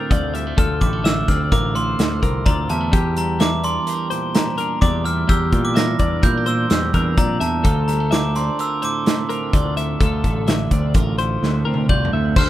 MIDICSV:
0, 0, Header, 1, 6, 480
1, 0, Start_track
1, 0, Key_signature, -1, "minor"
1, 0, Tempo, 471698
1, 584, Time_signature, 5, 2, 24, 8
1, 12716, End_track
2, 0, Start_track
2, 0, Title_t, "Glockenspiel"
2, 0, Program_c, 0, 9
2, 0, Note_on_c, 0, 93, 83
2, 550, Note_off_c, 0, 93, 0
2, 597, Note_on_c, 0, 89, 77
2, 814, Note_off_c, 0, 89, 0
2, 824, Note_on_c, 0, 86, 83
2, 932, Note_off_c, 0, 86, 0
2, 1072, Note_on_c, 0, 88, 88
2, 1305, Note_on_c, 0, 89, 84
2, 1315, Note_off_c, 0, 88, 0
2, 1412, Note_off_c, 0, 89, 0
2, 1545, Note_on_c, 0, 86, 79
2, 1767, Note_off_c, 0, 86, 0
2, 1786, Note_on_c, 0, 84, 81
2, 2500, Note_on_c, 0, 82, 82
2, 2525, Note_off_c, 0, 84, 0
2, 2608, Note_off_c, 0, 82, 0
2, 2748, Note_on_c, 0, 81, 81
2, 3191, Note_off_c, 0, 81, 0
2, 3233, Note_on_c, 0, 82, 82
2, 3450, Note_off_c, 0, 82, 0
2, 3474, Note_on_c, 0, 86, 94
2, 3708, Note_on_c, 0, 84, 91
2, 3715, Note_off_c, 0, 86, 0
2, 4427, Note_on_c, 0, 82, 82
2, 4445, Note_off_c, 0, 84, 0
2, 4898, Note_on_c, 0, 86, 81
2, 4918, Note_off_c, 0, 82, 0
2, 5006, Note_off_c, 0, 86, 0
2, 5144, Note_on_c, 0, 89, 88
2, 5386, Note_on_c, 0, 88, 90
2, 5389, Note_off_c, 0, 89, 0
2, 5747, Note_on_c, 0, 86, 87
2, 5754, Note_off_c, 0, 88, 0
2, 5867, Note_off_c, 0, 86, 0
2, 5869, Note_on_c, 0, 94, 94
2, 6345, Note_on_c, 0, 91, 96
2, 6359, Note_off_c, 0, 94, 0
2, 6589, Note_off_c, 0, 91, 0
2, 6591, Note_on_c, 0, 88, 84
2, 6696, Note_off_c, 0, 88, 0
2, 6825, Note_on_c, 0, 88, 89
2, 7269, Note_off_c, 0, 88, 0
2, 7303, Note_on_c, 0, 82, 83
2, 7541, Note_on_c, 0, 81, 84
2, 7549, Note_off_c, 0, 82, 0
2, 8018, Note_on_c, 0, 82, 82
2, 8035, Note_off_c, 0, 81, 0
2, 8266, Note_off_c, 0, 82, 0
2, 8267, Note_on_c, 0, 86, 92
2, 8374, Note_off_c, 0, 86, 0
2, 8508, Note_on_c, 0, 84, 83
2, 8728, Note_off_c, 0, 84, 0
2, 8758, Note_on_c, 0, 88, 88
2, 8996, Note_off_c, 0, 88, 0
2, 9002, Note_on_c, 0, 86, 78
2, 12072, Note_off_c, 0, 86, 0
2, 12106, Note_on_c, 0, 91, 81
2, 12598, Note_off_c, 0, 91, 0
2, 12600, Note_on_c, 0, 89, 78
2, 12716, Note_off_c, 0, 89, 0
2, 12716, End_track
3, 0, Start_track
3, 0, Title_t, "Clean electric guitar"
3, 0, Program_c, 1, 27
3, 0, Note_on_c, 1, 70, 71
3, 107, Note_off_c, 1, 70, 0
3, 107, Note_on_c, 1, 74, 74
3, 344, Note_off_c, 1, 74, 0
3, 344, Note_on_c, 1, 76, 73
3, 584, Note_off_c, 1, 76, 0
3, 587, Note_on_c, 1, 69, 89
3, 1061, Note_on_c, 1, 76, 76
3, 1065, Note_off_c, 1, 69, 0
3, 1304, Note_off_c, 1, 76, 0
3, 1304, Note_on_c, 1, 74, 68
3, 1543, Note_off_c, 1, 74, 0
3, 1550, Note_on_c, 1, 70, 74
3, 1782, Note_off_c, 1, 70, 0
3, 1782, Note_on_c, 1, 72, 66
3, 2260, Note_off_c, 1, 72, 0
3, 2265, Note_on_c, 1, 70, 70
3, 2500, Note_on_c, 1, 74, 69
3, 2503, Note_off_c, 1, 70, 0
3, 2745, Note_off_c, 1, 74, 0
3, 2745, Note_on_c, 1, 76, 70
3, 2981, Note_on_c, 1, 67, 87
3, 2983, Note_off_c, 1, 76, 0
3, 3461, Note_off_c, 1, 67, 0
3, 3461, Note_on_c, 1, 76, 80
3, 3702, Note_off_c, 1, 76, 0
3, 3702, Note_on_c, 1, 74, 71
3, 3935, Note_off_c, 1, 74, 0
3, 3935, Note_on_c, 1, 70, 77
3, 4172, Note_off_c, 1, 70, 0
3, 4176, Note_on_c, 1, 72, 69
3, 4654, Note_off_c, 1, 72, 0
3, 4658, Note_on_c, 1, 70, 74
3, 4897, Note_off_c, 1, 70, 0
3, 4901, Note_on_c, 1, 74, 73
3, 5133, Note_off_c, 1, 74, 0
3, 5133, Note_on_c, 1, 76, 72
3, 5377, Note_off_c, 1, 76, 0
3, 5380, Note_on_c, 1, 67, 87
3, 5855, Note_on_c, 1, 76, 78
3, 5860, Note_off_c, 1, 67, 0
3, 6096, Note_off_c, 1, 76, 0
3, 6100, Note_on_c, 1, 74, 68
3, 6336, Note_on_c, 1, 70, 77
3, 6340, Note_off_c, 1, 74, 0
3, 6575, Note_on_c, 1, 72, 69
3, 6578, Note_off_c, 1, 70, 0
3, 7057, Note_off_c, 1, 72, 0
3, 7062, Note_on_c, 1, 70, 73
3, 7303, Note_off_c, 1, 70, 0
3, 7303, Note_on_c, 1, 74, 73
3, 7530, Note_off_c, 1, 74, 0
3, 7534, Note_on_c, 1, 76, 72
3, 7774, Note_on_c, 1, 69, 89
3, 7777, Note_off_c, 1, 76, 0
3, 8251, Note_on_c, 1, 76, 80
3, 8257, Note_off_c, 1, 69, 0
3, 8499, Note_off_c, 1, 76, 0
3, 8499, Note_on_c, 1, 74, 71
3, 8740, Note_off_c, 1, 74, 0
3, 8740, Note_on_c, 1, 70, 77
3, 8976, Note_off_c, 1, 70, 0
3, 8976, Note_on_c, 1, 72, 67
3, 9454, Note_off_c, 1, 72, 0
3, 9458, Note_on_c, 1, 70, 76
3, 9702, Note_off_c, 1, 70, 0
3, 9702, Note_on_c, 1, 74, 72
3, 9938, Note_off_c, 1, 74, 0
3, 9942, Note_on_c, 1, 76, 71
3, 10182, Note_off_c, 1, 76, 0
3, 10182, Note_on_c, 1, 69, 87
3, 10662, Note_off_c, 1, 69, 0
3, 10664, Note_on_c, 1, 76, 76
3, 10903, Note_off_c, 1, 76, 0
3, 10903, Note_on_c, 1, 74, 70
3, 11143, Note_off_c, 1, 74, 0
3, 11143, Note_on_c, 1, 70, 80
3, 11378, Note_off_c, 1, 70, 0
3, 11382, Note_on_c, 1, 72, 68
3, 11853, Note_off_c, 1, 72, 0
3, 11857, Note_on_c, 1, 70, 72
3, 12097, Note_off_c, 1, 70, 0
3, 12101, Note_on_c, 1, 74, 72
3, 12342, Note_off_c, 1, 74, 0
3, 12347, Note_on_c, 1, 76, 68
3, 12581, Note_on_c, 1, 72, 92
3, 12584, Note_off_c, 1, 76, 0
3, 12716, Note_off_c, 1, 72, 0
3, 12716, End_track
4, 0, Start_track
4, 0, Title_t, "Clean electric guitar"
4, 0, Program_c, 2, 27
4, 0, Note_on_c, 2, 45, 59
4, 0, Note_on_c, 2, 50, 59
4, 0, Note_on_c, 2, 57, 60
4, 0, Note_on_c, 2, 60, 58
4, 0, Note_on_c, 2, 65, 64
4, 110, Note_off_c, 2, 65, 0
4, 114, Note_on_c, 2, 38, 67
4, 122, Note_on_c, 2, 65, 66
4, 348, Note_off_c, 2, 57, 0
4, 352, Note_on_c, 2, 55, 58
4, 477, Note_off_c, 2, 55, 0
4, 477, Note_on_c, 2, 57, 46
4, 564, Note_off_c, 2, 65, 0
4, 566, Note_off_c, 2, 60, 0
4, 582, Note_off_c, 2, 38, 0
4, 591, Note_off_c, 2, 57, 0
4, 594, Note_on_c, 2, 38, 75
4, 596, Note_off_c, 2, 45, 0
4, 603, Note_on_c, 2, 65, 69
4, 825, Note_on_c, 2, 55, 59
4, 946, Note_off_c, 2, 55, 0
4, 946, Note_on_c, 2, 57, 46
4, 1046, Note_off_c, 2, 50, 0
4, 1058, Note_on_c, 2, 50, 61
4, 1316, Note_on_c, 2, 60, 55
4, 1550, Note_off_c, 2, 65, 0
4, 1562, Note_on_c, 2, 65, 61
4, 1785, Note_on_c, 2, 45, 55
4, 2023, Note_off_c, 2, 57, 0
4, 2036, Note_on_c, 2, 57, 58
4, 2264, Note_off_c, 2, 60, 0
4, 2277, Note_on_c, 2, 60, 57
4, 2496, Note_off_c, 2, 38, 0
4, 2508, Note_off_c, 2, 65, 0
4, 2508, Note_on_c, 2, 38, 68
4, 2521, Note_on_c, 2, 65, 61
4, 2736, Note_off_c, 2, 57, 0
4, 2740, Note_on_c, 2, 55, 56
4, 2856, Note_off_c, 2, 55, 0
4, 2856, Note_on_c, 2, 57, 47
4, 2960, Note_off_c, 2, 60, 0
4, 2962, Note_off_c, 2, 65, 0
4, 2969, Note_off_c, 2, 38, 0
4, 2973, Note_on_c, 2, 40, 69
4, 2979, Note_off_c, 2, 57, 0
4, 2982, Note_off_c, 2, 45, 0
4, 2983, Note_on_c, 2, 67, 67
4, 3225, Note_on_c, 2, 55, 62
4, 3458, Note_off_c, 2, 50, 0
4, 3472, Note_on_c, 2, 52, 64
4, 3726, Note_on_c, 2, 62, 52
4, 3957, Note_off_c, 2, 67, 0
4, 3961, Note_on_c, 2, 67, 63
4, 4187, Note_on_c, 2, 46, 58
4, 4422, Note_off_c, 2, 55, 0
4, 4434, Note_on_c, 2, 55, 59
4, 4679, Note_off_c, 2, 62, 0
4, 4683, Note_on_c, 2, 62, 57
4, 4896, Note_off_c, 2, 40, 0
4, 4907, Note_off_c, 2, 67, 0
4, 4912, Note_on_c, 2, 40, 67
4, 4919, Note_on_c, 2, 67, 67
4, 5145, Note_off_c, 2, 55, 0
4, 5157, Note_on_c, 2, 55, 56
4, 5355, Note_off_c, 2, 46, 0
4, 5357, Note_off_c, 2, 40, 0
4, 5357, Note_off_c, 2, 52, 0
4, 5361, Note_off_c, 2, 67, 0
4, 5388, Note_on_c, 2, 40, 71
4, 5398, Note_on_c, 2, 67, 55
4, 5420, Note_off_c, 2, 62, 0
4, 5628, Note_off_c, 2, 55, 0
4, 5643, Note_on_c, 2, 55, 62
4, 5874, Note_on_c, 2, 52, 60
4, 6122, Note_on_c, 2, 62, 56
4, 6343, Note_off_c, 2, 67, 0
4, 6347, Note_on_c, 2, 64, 64
4, 6488, Note_off_c, 2, 64, 0
4, 6488, Note_on_c, 2, 67, 52
4, 6596, Note_on_c, 2, 46, 56
4, 6824, Note_off_c, 2, 55, 0
4, 6837, Note_on_c, 2, 55, 61
4, 7083, Note_off_c, 2, 62, 0
4, 7087, Note_on_c, 2, 62, 61
4, 7305, Note_off_c, 2, 40, 0
4, 7310, Note_on_c, 2, 41, 61
4, 7545, Note_off_c, 2, 41, 0
4, 7551, Note_on_c, 2, 40, 63
4, 7758, Note_off_c, 2, 52, 0
4, 7759, Note_off_c, 2, 46, 0
4, 7786, Note_off_c, 2, 40, 0
4, 7789, Note_off_c, 2, 55, 0
4, 7790, Note_on_c, 2, 38, 73
4, 7793, Note_off_c, 2, 67, 0
4, 7797, Note_on_c, 2, 65, 68
4, 8028, Note_on_c, 2, 55, 60
4, 8143, Note_off_c, 2, 55, 0
4, 8143, Note_on_c, 2, 57, 47
4, 8265, Note_on_c, 2, 50, 65
4, 8504, Note_off_c, 2, 62, 0
4, 8508, Note_on_c, 2, 60, 56
4, 8743, Note_off_c, 2, 65, 0
4, 8747, Note_on_c, 2, 65, 62
4, 8987, Note_on_c, 2, 45, 58
4, 9222, Note_off_c, 2, 57, 0
4, 9236, Note_on_c, 2, 57, 60
4, 9459, Note_off_c, 2, 60, 0
4, 9463, Note_on_c, 2, 60, 59
4, 9697, Note_off_c, 2, 38, 0
4, 9701, Note_on_c, 2, 38, 70
4, 9711, Note_off_c, 2, 65, 0
4, 9715, Note_on_c, 2, 65, 63
4, 9945, Note_off_c, 2, 57, 0
4, 9949, Note_on_c, 2, 57, 56
4, 10182, Note_off_c, 2, 38, 0
4, 10184, Note_off_c, 2, 45, 0
4, 10186, Note_on_c, 2, 38, 73
4, 10190, Note_off_c, 2, 65, 0
4, 10194, Note_on_c, 2, 65, 66
4, 10217, Note_off_c, 2, 60, 0
4, 10439, Note_off_c, 2, 57, 0
4, 10444, Note_on_c, 2, 57, 60
4, 10652, Note_off_c, 2, 50, 0
4, 10664, Note_on_c, 2, 50, 60
4, 10918, Note_on_c, 2, 60, 53
4, 11138, Note_off_c, 2, 65, 0
4, 11150, Note_on_c, 2, 65, 66
4, 11388, Note_on_c, 2, 45, 57
4, 11629, Note_off_c, 2, 57, 0
4, 11641, Note_on_c, 2, 57, 61
4, 11863, Note_off_c, 2, 60, 0
4, 11875, Note_on_c, 2, 60, 55
4, 12104, Note_off_c, 2, 38, 0
4, 12106, Note_off_c, 2, 65, 0
4, 12115, Note_on_c, 2, 38, 66
4, 12120, Note_on_c, 2, 65, 62
4, 12351, Note_off_c, 2, 57, 0
4, 12363, Note_on_c, 2, 57, 57
4, 12560, Note_off_c, 2, 60, 0
4, 12562, Note_off_c, 2, 65, 0
4, 12564, Note_off_c, 2, 57, 0
4, 12584, Note_off_c, 2, 38, 0
4, 12585, Note_off_c, 2, 45, 0
4, 12596, Note_on_c, 2, 38, 72
4, 12602, Note_on_c, 2, 69, 70
4, 12716, Note_off_c, 2, 38, 0
4, 12716, Note_off_c, 2, 50, 0
4, 12716, Note_off_c, 2, 69, 0
4, 12716, End_track
5, 0, Start_track
5, 0, Title_t, "Picked electric bass"
5, 0, Program_c, 3, 34
5, 111, Note_on_c, 3, 38, 78
5, 534, Note_off_c, 3, 38, 0
5, 594, Note_on_c, 3, 38, 84
5, 802, Note_off_c, 3, 38, 0
5, 828, Note_on_c, 3, 33, 93
5, 1252, Note_off_c, 3, 33, 0
5, 1308, Note_on_c, 3, 38, 82
5, 1519, Note_off_c, 3, 38, 0
5, 1550, Note_on_c, 3, 33, 91
5, 1973, Note_off_c, 3, 33, 0
5, 2025, Note_on_c, 3, 38, 90
5, 2237, Note_off_c, 3, 38, 0
5, 2267, Note_on_c, 3, 36, 78
5, 2481, Note_off_c, 3, 36, 0
5, 2507, Note_on_c, 3, 38, 74
5, 2721, Note_off_c, 3, 38, 0
5, 2748, Note_on_c, 3, 40, 74
5, 2961, Note_off_c, 3, 40, 0
5, 2985, Note_on_c, 3, 40, 81
5, 3836, Note_off_c, 3, 40, 0
5, 4903, Note_on_c, 3, 40, 83
5, 5328, Note_off_c, 3, 40, 0
5, 5388, Note_on_c, 3, 40, 78
5, 5598, Note_off_c, 3, 40, 0
5, 5623, Note_on_c, 3, 46, 89
5, 6048, Note_off_c, 3, 46, 0
5, 6103, Note_on_c, 3, 40, 77
5, 6315, Note_off_c, 3, 40, 0
5, 6345, Note_on_c, 3, 46, 86
5, 6769, Note_off_c, 3, 46, 0
5, 6830, Note_on_c, 3, 40, 89
5, 7039, Note_off_c, 3, 40, 0
5, 7062, Note_on_c, 3, 40, 92
5, 7274, Note_off_c, 3, 40, 0
5, 7301, Note_on_c, 3, 46, 87
5, 7514, Note_off_c, 3, 46, 0
5, 7544, Note_on_c, 3, 40, 81
5, 7756, Note_off_c, 3, 40, 0
5, 7785, Note_on_c, 3, 38, 82
5, 8636, Note_off_c, 3, 38, 0
5, 9704, Note_on_c, 3, 38, 78
5, 10130, Note_off_c, 3, 38, 0
5, 10184, Note_on_c, 3, 38, 82
5, 10396, Note_off_c, 3, 38, 0
5, 10423, Note_on_c, 3, 33, 95
5, 10849, Note_off_c, 3, 33, 0
5, 10901, Note_on_c, 3, 38, 82
5, 11115, Note_off_c, 3, 38, 0
5, 11139, Note_on_c, 3, 33, 87
5, 11567, Note_off_c, 3, 33, 0
5, 11628, Note_on_c, 3, 38, 90
5, 11838, Note_off_c, 3, 38, 0
5, 11869, Note_on_c, 3, 38, 89
5, 12079, Note_off_c, 3, 38, 0
5, 12103, Note_on_c, 3, 36, 69
5, 12319, Note_off_c, 3, 36, 0
5, 12347, Note_on_c, 3, 38, 79
5, 12561, Note_off_c, 3, 38, 0
5, 12581, Note_on_c, 3, 38, 85
5, 12716, Note_off_c, 3, 38, 0
5, 12716, End_track
6, 0, Start_track
6, 0, Title_t, "Drums"
6, 110, Note_on_c, 9, 36, 95
6, 110, Note_on_c, 9, 42, 70
6, 212, Note_off_c, 9, 36, 0
6, 212, Note_off_c, 9, 42, 0
6, 353, Note_on_c, 9, 42, 55
6, 455, Note_off_c, 9, 42, 0
6, 588, Note_on_c, 9, 42, 73
6, 589, Note_on_c, 9, 36, 106
6, 690, Note_off_c, 9, 36, 0
6, 690, Note_off_c, 9, 42, 0
6, 829, Note_on_c, 9, 36, 70
6, 831, Note_on_c, 9, 42, 56
6, 931, Note_off_c, 9, 36, 0
6, 933, Note_off_c, 9, 42, 0
6, 1068, Note_on_c, 9, 42, 72
6, 1077, Note_on_c, 9, 38, 104
6, 1170, Note_off_c, 9, 42, 0
6, 1179, Note_off_c, 9, 38, 0
6, 1307, Note_on_c, 9, 36, 77
6, 1307, Note_on_c, 9, 42, 54
6, 1316, Note_on_c, 9, 38, 34
6, 1408, Note_off_c, 9, 36, 0
6, 1409, Note_off_c, 9, 42, 0
6, 1418, Note_off_c, 9, 38, 0
6, 1546, Note_on_c, 9, 42, 76
6, 1547, Note_on_c, 9, 36, 94
6, 1648, Note_off_c, 9, 42, 0
6, 1649, Note_off_c, 9, 36, 0
6, 1789, Note_on_c, 9, 42, 56
6, 1891, Note_off_c, 9, 42, 0
6, 2025, Note_on_c, 9, 42, 79
6, 2034, Note_on_c, 9, 38, 104
6, 2126, Note_off_c, 9, 42, 0
6, 2135, Note_off_c, 9, 38, 0
6, 2266, Note_on_c, 9, 36, 67
6, 2270, Note_on_c, 9, 42, 56
6, 2368, Note_off_c, 9, 36, 0
6, 2372, Note_off_c, 9, 42, 0
6, 2505, Note_on_c, 9, 36, 99
6, 2506, Note_on_c, 9, 42, 78
6, 2607, Note_off_c, 9, 36, 0
6, 2608, Note_off_c, 9, 42, 0
6, 2741, Note_on_c, 9, 42, 60
6, 2843, Note_off_c, 9, 42, 0
6, 2980, Note_on_c, 9, 42, 83
6, 2983, Note_on_c, 9, 36, 102
6, 3082, Note_off_c, 9, 42, 0
6, 3084, Note_off_c, 9, 36, 0
6, 3221, Note_on_c, 9, 42, 60
6, 3322, Note_off_c, 9, 42, 0
6, 3458, Note_on_c, 9, 42, 81
6, 3467, Note_on_c, 9, 38, 106
6, 3560, Note_off_c, 9, 42, 0
6, 3569, Note_off_c, 9, 38, 0
6, 3700, Note_on_c, 9, 42, 61
6, 3802, Note_off_c, 9, 42, 0
6, 3937, Note_on_c, 9, 42, 76
6, 4039, Note_off_c, 9, 42, 0
6, 4181, Note_on_c, 9, 42, 55
6, 4282, Note_off_c, 9, 42, 0
6, 4422, Note_on_c, 9, 42, 85
6, 4431, Note_on_c, 9, 38, 113
6, 4524, Note_off_c, 9, 42, 0
6, 4533, Note_off_c, 9, 38, 0
6, 4660, Note_on_c, 9, 42, 54
6, 4762, Note_off_c, 9, 42, 0
6, 4902, Note_on_c, 9, 42, 71
6, 4905, Note_on_c, 9, 36, 94
6, 5004, Note_off_c, 9, 42, 0
6, 5006, Note_off_c, 9, 36, 0
6, 5147, Note_on_c, 9, 42, 55
6, 5249, Note_off_c, 9, 42, 0
6, 5384, Note_on_c, 9, 36, 103
6, 5385, Note_on_c, 9, 42, 75
6, 5486, Note_off_c, 9, 36, 0
6, 5487, Note_off_c, 9, 42, 0
6, 5621, Note_on_c, 9, 42, 57
6, 5623, Note_on_c, 9, 36, 66
6, 5723, Note_off_c, 9, 42, 0
6, 5725, Note_off_c, 9, 36, 0
6, 5861, Note_on_c, 9, 42, 75
6, 5870, Note_on_c, 9, 38, 100
6, 5963, Note_off_c, 9, 42, 0
6, 5972, Note_off_c, 9, 38, 0
6, 6096, Note_on_c, 9, 42, 57
6, 6101, Note_on_c, 9, 36, 76
6, 6197, Note_off_c, 9, 42, 0
6, 6203, Note_off_c, 9, 36, 0
6, 6338, Note_on_c, 9, 42, 77
6, 6342, Note_on_c, 9, 36, 101
6, 6440, Note_off_c, 9, 42, 0
6, 6444, Note_off_c, 9, 36, 0
6, 6575, Note_on_c, 9, 42, 54
6, 6677, Note_off_c, 9, 42, 0
6, 6817, Note_on_c, 9, 42, 84
6, 6826, Note_on_c, 9, 38, 104
6, 6919, Note_off_c, 9, 42, 0
6, 6928, Note_off_c, 9, 38, 0
6, 7059, Note_on_c, 9, 42, 60
6, 7062, Note_on_c, 9, 36, 64
6, 7161, Note_off_c, 9, 42, 0
6, 7164, Note_off_c, 9, 36, 0
6, 7301, Note_on_c, 9, 42, 79
6, 7302, Note_on_c, 9, 36, 95
6, 7402, Note_off_c, 9, 42, 0
6, 7404, Note_off_c, 9, 36, 0
6, 7542, Note_on_c, 9, 42, 64
6, 7644, Note_off_c, 9, 42, 0
6, 7779, Note_on_c, 9, 42, 80
6, 7782, Note_on_c, 9, 36, 102
6, 7880, Note_off_c, 9, 42, 0
6, 7884, Note_off_c, 9, 36, 0
6, 8025, Note_on_c, 9, 42, 60
6, 8126, Note_off_c, 9, 42, 0
6, 8259, Note_on_c, 9, 42, 76
6, 8268, Note_on_c, 9, 38, 99
6, 8361, Note_off_c, 9, 42, 0
6, 8370, Note_off_c, 9, 38, 0
6, 8502, Note_on_c, 9, 42, 57
6, 8511, Note_on_c, 9, 38, 31
6, 8604, Note_off_c, 9, 42, 0
6, 8613, Note_off_c, 9, 38, 0
6, 8741, Note_on_c, 9, 42, 77
6, 8843, Note_off_c, 9, 42, 0
6, 8980, Note_on_c, 9, 42, 54
6, 9081, Note_off_c, 9, 42, 0
6, 9223, Note_on_c, 9, 42, 77
6, 9232, Note_on_c, 9, 38, 109
6, 9325, Note_off_c, 9, 42, 0
6, 9334, Note_off_c, 9, 38, 0
6, 9463, Note_on_c, 9, 42, 54
6, 9565, Note_off_c, 9, 42, 0
6, 9702, Note_on_c, 9, 36, 94
6, 9702, Note_on_c, 9, 42, 71
6, 9804, Note_off_c, 9, 36, 0
6, 9804, Note_off_c, 9, 42, 0
6, 9943, Note_on_c, 9, 42, 57
6, 10044, Note_off_c, 9, 42, 0
6, 10181, Note_on_c, 9, 36, 96
6, 10181, Note_on_c, 9, 42, 69
6, 10283, Note_off_c, 9, 36, 0
6, 10283, Note_off_c, 9, 42, 0
6, 10421, Note_on_c, 9, 42, 55
6, 10422, Note_on_c, 9, 36, 66
6, 10523, Note_off_c, 9, 36, 0
6, 10523, Note_off_c, 9, 42, 0
6, 10660, Note_on_c, 9, 42, 79
6, 10669, Note_on_c, 9, 38, 100
6, 10761, Note_off_c, 9, 42, 0
6, 10770, Note_off_c, 9, 38, 0
6, 10900, Note_on_c, 9, 42, 62
6, 10901, Note_on_c, 9, 36, 75
6, 11002, Note_off_c, 9, 42, 0
6, 11003, Note_off_c, 9, 36, 0
6, 11135, Note_on_c, 9, 42, 81
6, 11140, Note_on_c, 9, 36, 100
6, 11237, Note_off_c, 9, 42, 0
6, 11242, Note_off_c, 9, 36, 0
6, 11381, Note_on_c, 9, 42, 57
6, 11482, Note_off_c, 9, 42, 0
6, 11632, Note_on_c, 9, 38, 53
6, 11734, Note_off_c, 9, 38, 0
6, 11943, Note_on_c, 9, 48, 66
6, 12045, Note_off_c, 9, 48, 0
6, 12101, Note_on_c, 9, 47, 62
6, 12103, Note_on_c, 9, 36, 91
6, 12203, Note_off_c, 9, 47, 0
6, 12204, Note_off_c, 9, 36, 0
6, 12262, Note_on_c, 9, 45, 77
6, 12363, Note_off_c, 9, 45, 0
6, 12580, Note_on_c, 9, 49, 112
6, 12581, Note_on_c, 9, 36, 109
6, 12682, Note_off_c, 9, 49, 0
6, 12683, Note_off_c, 9, 36, 0
6, 12716, End_track
0, 0, End_of_file